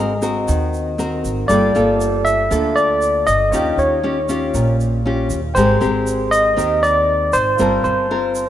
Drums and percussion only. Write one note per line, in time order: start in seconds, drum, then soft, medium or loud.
0.22 shaker medium
0.48 shaker medium
0.74 shaker soft
0.99 shaker soft
1.25 shaker medium
1.49 shaker medium
1.75 shaker soft
2.01 shaker medium
2.26 shaker medium
2.52 shaker medium
2.77 shaker soft
3.02 shaker soft
3.27 shaker medium
3.53 shaker medium
3.78 shaker soft
4.29 shaker medium
4.54 shaker medium
4.80 shaker soft
5.30 shaker medium
5.56 shaker medium
5.82 shaker soft
6.07 shaker medium
6.33 shaker medium
6.59 shaker medium
6.83 shaker soft
7.33 shaker medium
7.59 shaker medium
7.85 shaker soft
8.35 shaker medium